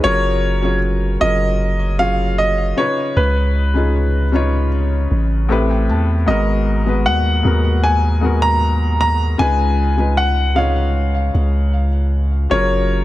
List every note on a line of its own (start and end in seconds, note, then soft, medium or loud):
0.00 0.52 F#3 medium
0.00 0.52 C#4 medium
0.00 0.23 D#4 medium
0.00 0.22 B4 medium
0.00 0.78 C#5 loud
0.04 1.17 F#1 loud
0.04 0.53 F4 medium
0.04 0.53 G#4 medium
0.04 0.54 A#4 loud
0.61 1.10 F#3 medium
0.61 1.11 C#4 medium
0.61 1.11 F4 medium
0.61 1.12 G#4 medium
0.61 1.12 C#5 medium
1.20 2.73 F#1 medium
1.20 1.85 F#3 medium
1.20 1.85 C#4 medium
1.20 1.86 F4 medium
1.20 1.86 G#4 medium
1.20 1.87 A#4 medium
1.20 1.95 D#5 loud
1.98 2.77 F#3 medium
1.98 2.75 C#4 medium
1.98 2.77 F4 medium
1.98 2.78 G#4 medium
1.98 2.78 C#5 medium
1.98 2.35 F5 loud
2.38 2.78 D#5 medium
2.76 3.57 C#3 medium
2.76 3.57 C#4 medium
2.76 3.58 D#4 medium
2.76 3.58 F4 medium
2.76 3.59 B4 medium
2.76 3.18 C#5 medium
3.17 5.07 C#2 loud
3.17 4.68 B4 medium
3.74 4.22 C#3 medium
3.74 4.23 C#4 medium
3.74 4.23 D#4 medium
3.74 4.24 F4 medium
3.74 4.24 G#4 medium
4.32 5.49 C#3 medium
4.32 5.50 C#4 medium
4.32 5.50 D#4 medium
4.32 5.51 F4 medium
4.32 5.51 C#5 medium
5.11 5.90 A1 loud
5.49 6.14 A2 medium
5.49 6.14 A3 medium
5.49 6.14 C4 medium
5.49 6.15 G4 medium
5.49 6.15 B4 loud
5.49 5.68 E5 medium
5.70 5.88 G5 medium
5.89 6.26 E2 loud
5.89 6.25 A5 medium
6.26 7.07 G#1 loud
6.26 6.75 G#2 medium
6.26 6.76 G#3 medium
6.26 6.76 B3 medium
6.26 6.77 F#4 medium
6.26 6.77 A#4 loud
6.26 7.08 D#5 medium
6.85 7.34 G#2 medium
6.85 7.34 G#3 medium
6.85 7.35 B3 medium
6.85 7.35 F#4 medium
6.85 7.36 B4 medium
7.06 7.43 D#2 medium
7.06 7.86 F#5 medium
7.43 9.36 D#2 loud
7.43 8.08 G#2 medium
7.43 8.09 G#3 medium
7.43 8.09 B3 medium
7.43 8.10 F#4 medium
7.43 8.10 A#4 medium
7.84 8.44 G#5 medium
8.21 9.18 G#2 medium
8.21 9.19 G#3 medium
8.21 9.19 B3 medium
8.21 9.20 F#4 medium
8.21 9.20 A#4 medium
8.42 8.99 A#5 loud
9.01 9.37 A#5 medium
9.38 11.30 C#2 loud
9.38 9.87 C#3 loud
9.38 9.87 G#3 medium
9.38 9.88 D#4 medium
9.38 9.88 F4 medium
9.38 9.89 B4 loud
9.38 10.20 G#5 loud
9.96 10.45 C#3 medium
9.96 10.46 G#3 medium
9.96 10.46 D#4 medium
9.96 10.47 F4 medium
9.96 10.47 B4 medium
10.17 10.58 F#5 medium
10.55 11.84 C#3 medium
10.55 11.85 G#3 medium
10.55 11.85 D#4 medium
10.55 11.85 F4 medium
10.55 11.86 C#5 medium
10.55 11.30 F5 medium
11.34 12.47 C#2 loud
12.50 13.04 F#1 loud
12.50 12.99 F#3 medium
12.50 12.99 C#4 medium
12.50 13.00 F4 medium
12.50 13.00 G#4 medium
12.50 13.00 A#4 loud
12.50 13.04 C#5 medium